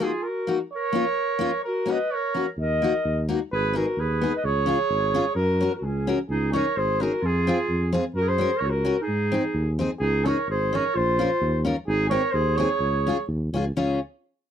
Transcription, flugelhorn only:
0.03 0.24 G#4 medium
0.23 0.58 A#4 medium
0.73 1.60 C#5 loud
1.64 1.93 A#4 medium
1.91 2.13 D#5 medium
2.11 2.46 C#5 loud
2.61 3.23 D#5 loud
3.52 3.78 B4 loud
3.76 4.02 A#4 medium
4.00 4.33 B4 medium
4.37 4.47 D#5 medium
4.45 5.34 C#5 loud
5.35 5.73 A#4 loud
5.75 5.85 A#4 medium
5.83 6.19 G#4 medium
6.30 6.52 G#4 medium
6.52 6.78 C#5 loud
6.77 7.03 C5 medium
7.01 7.28 A#4 medium
7.26 7.95 G#4 loud
8.15 8.30 A#4 loud
8.28 8.61 C5 loud
8.59 8.72 C#5 medium
8.70 9.02 A#4 medium
9.03 9.72 G#4 medium
10.00 10.27 G#4 loud
10.26 10.48 C#5 medium
10.51 10.77 C5 medium
10.75 10.98 C#5 loud
10.97 11.65 C5 loud
11.87 12.09 G#4 loud
12.10 12.33 C#5 loud
12.31 12.58 C5 medium
12.56 13.26 C#5 loud

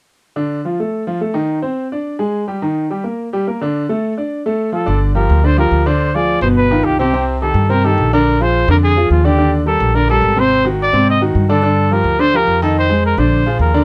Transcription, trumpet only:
4.74 5.00 A4 medium
5.16 5.47 A#4 medium
5.46 5.59 C5 medium
5.59 5.88 A#4 medium
5.87 6.16 C5 medium
6.15 6.41 D5 loud
6.42 6.48 C5 medium
6.57 6.86 B4 loud
6.84 6.98 G4 medium
6.99 7.25 G4 medium
7.42 7.71 A4 medium
7.70 7.87 A#4 medium
7.85 8.12 A4 medium
8.13 8.44 A#4 medium
8.42 8.69 C5 loud
8.71 8.76 A#4 medium
8.84 9.09 G#4 loud
9.11 9.27 F4 medium
9.25 9.52 G4 medium
9.67 9.97 A4 medium
9.95 10.09 A#4 loud
10.10 10.41 A4 medium
10.39 10.66 C5 loud
10.82 11.07 D5 loud
11.10 11.21 D#5 medium
11.49 11.95 A4 medium
11.93 12.22 A#4 medium
12.20 12.38 C5 loud
12.36 12.62 A#4 loud
12.63 12.75 A4 medium
12.79 13.03 C5 loud
13.06 13.20 A#4 medium
13.19 13.60 C5 medium
13.61 13.84 A#4 medium

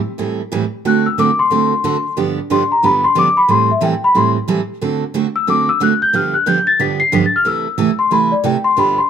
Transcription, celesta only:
0.87 1.07 F#6 medium
1.06 1.18 E6 medium
1.19 1.39 D6 medium
1.39 2.14 C6 loud
2.52 2.71 C6 medium
2.72 2.83 A#5 medium
2.85 3.04 B5 medium
3.04 3.16 C6 loud
3.19 3.38 D6 loud
3.37 3.49 B5 medium
3.51 3.70 C6 loud
3.71 3.83 E5 medium
3.84 4.04 G5 medium
4.04 4.16 B5 loud
4.17 4.29 C6 medium
5.36 5.47 E6 loud
5.50 5.69 D6 medium
5.69 5.81 E6 loud
5.83 6.02 F#6 medium
6.02 6.14 G6 loud
6.16 6.35 F6 medium
6.34 6.46 F#6 medium
6.47 6.67 G6 medium
6.67 6.79 A6 loud
6.80 7.00 B6 loud
7.00 7.12 C7 loud
7.15 7.25 B6 medium
7.26 7.36 A6 medium
7.36 7.46 F6 medium
7.47 7.97 E6 medium
7.99 8.11 C6 medium
8.12 8.32 B5 medium
8.32 8.44 D5 medium
8.45 8.65 G5 medium
8.64 8.77 C6 loud
8.79 8.99 B5 medium
8.98 9.10 C6 medium

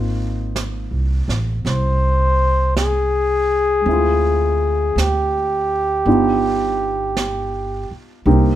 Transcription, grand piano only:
0.00 3.85 A#3 soft
0.00 3.84 C4 soft
0.00 3.87 D#4 soft
0.00 3.88 F4 soft
0.00 3.88 D#5 soft
3.81 6.04 G#3 soft
3.85 6.06 C4 soft
3.85 6.08 E4 soft
3.92 6.07 F4 soft
6.06 8.26 B3 soft
6.06 8.26 D4 soft
6.06 8.25 D#4 soft
6.06 8.27 F4 soft
8.26 8.55 A#3 soft
8.26 8.55 C4 soft
8.26 8.55 D#4 soft
8.26 8.55 G4 medium

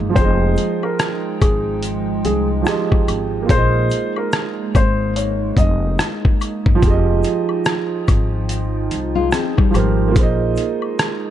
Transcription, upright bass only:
0.00 0.15 G1 medium
0.17 0.55 F1 loud
1.42 2.21 G#1 medium
2.25 2.64 C2 medium
3.08 3.47 G#1 medium
3.50 3.89 A#1 loud
4.75 5.54 G#1 loud
5.57 5.96 F1 loud
6.66 6.82 G1 medium
6.83 7.22 F1 loud
8.09 8.88 G#1 medium
8.92 9.30 C2 medium
9.74 10.13 G#1 loud
10.16 10.55 A#1 loud

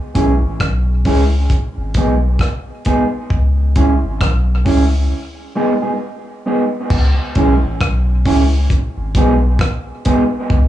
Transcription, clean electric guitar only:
0.14 0.32 G#3 medium
0.14 0.32 C#4 medium
0.14 0.32 E4 medium
0.14 0.33 G#4 medium
1.05 1.23 G#3 medium
1.05 1.22 C#4 medium
1.05 1.23 E4 medium
1.05 1.23 G#4 medium
1.97 2.13 G#3 medium
1.97 2.13 B3 medium
1.97 2.13 D#4 medium
1.97 2.14 G#4 medium
2.86 3.03 G#3 medium
2.86 3.03 B3 medium
2.86 3.03 D#4 medium
2.86 3.03 G#4 medium
3.76 3.93 G#3 medium
3.76 3.93 C#4 medium
3.76 3.93 E4 medium
3.76 3.93 G#4 medium
4.65 4.82 G#3 medium
4.65 4.83 C#4 medium
4.65 4.83 E4 medium
4.65 4.83 G#4 medium
5.55 5.72 G#3 medium
5.55 5.73 B3 medium
5.55 5.73 D#4 medium
5.55 5.73 G#4 medium
5.82 5.92 G#3 soft
5.82 5.92 B3 medium
5.82 5.92 D#4 medium
5.82 5.92 G#4 medium
6.46 6.63 G#3 medium
6.46 6.63 B3 medium
6.46 6.63 D#4 medium
6.46 6.63 G#4 medium
7.36 7.53 G#3 medium
7.36 7.53 C#4 medium
7.36 7.53 E4 medium
7.36 7.54 G#4 medium
8.26 8.43 G#3 medium
8.26 8.43 C#4 medium
8.26 8.43 E4 medium
8.26 8.43 G#4 medium
9.16 9.33 G#3 medium
9.16 9.33 B3 medium
9.16 9.33 D#4 medium
9.16 9.33 G#4 medium
10.05 10.22 G#3 medium
10.05 10.22 B3 loud
10.05 10.23 D#4 medium
10.05 10.23 G#4 medium

